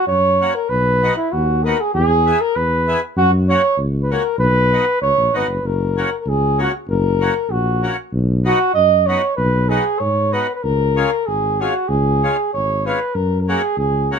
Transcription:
0.07 0.48 F#2 medium
0.07 0.56 C#5 loud
0.40 0.53 A#3 medium
0.40 0.54 C#4 soft
0.40 0.54 F#4 medium
0.54 0.70 A#4 medium
0.69 1.10 B1 medium
0.69 1.16 B4 loud
1.02 1.15 B3 medium
1.02 1.16 D#4 medium
1.02 1.16 F#4 medium
1.16 1.33 E4 medium
1.32 1.72 D#2 loud
1.32 1.65 F#4 medium
1.64 1.78 B3 medium
1.64 1.78 D#4 soft
1.64 1.78 F#4 medium
1.64 1.82 A#4 medium
1.80 1.93 G#4 medium
1.94 2.34 E2 loud
1.94 2.42 G#4 loud
2.26 2.39 B3 medium
2.26 2.39 E4 medium
2.26 2.39 G#4 medium
2.41 2.57 A#4 medium
2.55 2.95 E2 medium
2.55 3.02 B4 loud
2.87 3.00 B3 medium
2.87 3.00 E4 medium
2.87 3.01 G#4 medium
3.16 3.56 F#2 loud
3.16 3.31 F#4 loud
3.49 3.61 A#3 medium
3.49 3.62 C#4 medium
3.49 3.62 F#4 medium
3.49 3.79 C#5 loud
3.78 4.17 C#2 loud
4.02 4.14 B4 medium
4.11 4.23 A#3 medium
4.11 4.23 C#4 medium
4.11 4.23 F#4 medium
4.11 4.38 A#4 medium
4.38 4.79 B1 loud
4.38 4.97 B4 loud
4.72 4.85 B3 medium
4.72 4.85 D#4 medium
4.72 4.86 F#4 medium
5.02 5.12 C#2 medium
5.02 5.38 C#5 loud
5.17 5.32 A#1 medium
5.33 5.47 G#1 medium
5.33 5.47 B3 medium
5.33 5.47 D#4 medium
5.33 5.47 F#4 medium
5.33 5.67 B4 medium
5.48 5.61 F#1 medium
5.63 6.04 F#1 medium
5.63 6.19 A#4 medium
5.97 6.10 A#3 medium
5.97 6.10 C#4 medium
5.97 6.10 F#4 medium
6.19 6.30 A#4 medium
6.26 6.66 C#2 medium
6.26 6.60 G#4 loud
6.58 6.72 A#3 medium
6.58 6.72 C#4 medium
6.58 6.72 F#4 medium
6.58 6.74 F#4 medium
6.88 7.29 F#1 loud
6.88 7.53 A#4 medium
7.20 7.34 A#3 medium
7.20 7.34 C#4 medium
7.20 7.34 F#4 medium
7.49 7.90 A#1 medium
7.49 7.99 F#4 medium
7.83 7.96 A#3 medium
7.83 7.97 C#4 medium
7.83 7.97 F#4 medium
8.13 8.53 B1 loud
8.44 8.58 B3 medium
8.44 8.59 D#4 medium
8.44 8.59 F#4 medium
8.44 8.73 F#4 loud
8.74 9.16 F#2 medium
8.74 9.08 D#5 loud
9.06 9.22 B3 medium
9.06 9.22 D#4 soft
9.06 9.22 F#4 medium
9.06 9.35 C#5 medium
9.36 9.79 B1 loud
9.36 9.70 B4 medium
9.69 9.84 B3 medium
9.69 9.84 D#4 medium
9.69 9.85 F#4 medium
9.69 10.01 G#4 medium
9.99 10.42 G#2 medium
9.99 10.34 C#5 medium
10.32 10.47 B3 medium
10.32 10.47 D#4 soft
10.32 10.47 F#4 medium
10.32 10.55 B4 medium
10.55 10.64 B4 medium
10.63 11.05 C#2 loud
10.63 11.28 A#4 medium
10.96 11.10 G#3 medium
10.96 11.10 C#4 medium
10.96 11.11 F4 medium
11.26 11.68 G#1 medium
11.26 11.62 G#4 medium
11.60 11.74 G#3 soft
11.60 11.74 C#4 soft
11.60 11.74 F4 medium
11.60 11.90 F#4 medium
11.88 12.30 C#2 loud
11.88 12.52 G#4 medium
12.23 12.37 G#3 medium
12.23 12.37 C#4 medium
12.23 12.37 F4 medium
12.53 12.94 G#1 medium
12.53 12.87 C#5 medium
12.85 12.99 G#3 medium
12.85 12.99 C#4 soft
12.85 12.99 F4 medium
12.85 13.16 B4 medium
13.14 13.56 F#2 medium
13.14 13.40 A#4 medium
13.41 13.51 A#4 medium
13.48 13.62 A#3 medium
13.48 13.62 C#4 medium
13.48 13.62 F#4 medium
13.48 13.78 G#4 medium
13.77 14.18 C#2 medium
13.77 14.13 G#4 medium
14.11 14.19 A#3 medium
14.11 14.19 C#4 medium
14.11 14.19 F#4 medium

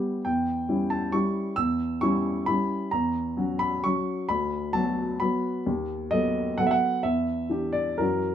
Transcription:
0.00 0.21 G3 soft
0.00 0.21 B3 soft
0.00 0.21 G4 soft
0.00 0.24 E5 medium
0.25 0.68 E2 soft
0.25 0.91 G5 medium
0.69 1.09 G3 soft
0.69 1.09 C#4 soft
0.69 1.09 E4 soft
0.90 1.13 A5 medium
1.12 1.53 G3 soft
1.12 1.53 C#4 soft
1.12 1.53 E4 soft
1.12 1.57 C#6 medium
1.56 2.00 E2 soft
1.56 2.01 E6 medium
2.01 2.43 G3 soft
2.01 2.43 C#4 soft
2.01 2.43 E4 soft
2.01 2.47 C#6 medium
2.46 2.88 G3 soft
2.46 2.89 C#4 soft
2.46 2.89 E4 soft
2.46 2.92 B5 medium
2.91 3.36 E2 medium
2.91 3.59 A#5 medium
3.37 3.79 F#3 soft
3.37 3.79 C#4 soft
3.37 3.79 F#4 soft
3.59 3.83 B5 medium
3.84 4.25 F#3 soft
3.84 4.25 C#4 soft
3.84 4.25 F#4 soft
3.84 4.29 C#6 medium
4.29 4.73 D2 medium
4.29 4.74 B5 medium
4.73 5.17 F#3 soft
4.73 5.17 B3 soft
4.73 5.17 F#4 soft
4.73 5.20 A5 medium
5.20 5.62 F#3 soft
5.20 5.63 B3 soft
5.20 5.63 F#4 soft
5.20 5.66 B5 medium
5.66 6.11 D#2 medium
6.11 6.55 F#3 soft
6.11 6.55 B3 soft
6.11 6.55 A4 soft
6.11 6.58 D#5 medium
6.58 7.00 F#3 soft
6.58 7.00 B3 soft
6.58 7.01 A4 soft
6.58 6.65 F#5 medium
6.67 6.73 E5 medium
6.71 7.04 F#5 medium
7.03 7.49 E2 soft
7.03 7.74 E5 medium
7.50 7.96 E3 soft
7.50 7.96 D4 soft
7.50 7.97 G4 soft
7.73 7.99 D5 medium
7.98 8.35 F#2 soft
7.98 8.35 E3 soft
7.98 8.35 C#4 soft
7.98 8.35 F#4 soft
7.98 8.35 A#4 medium

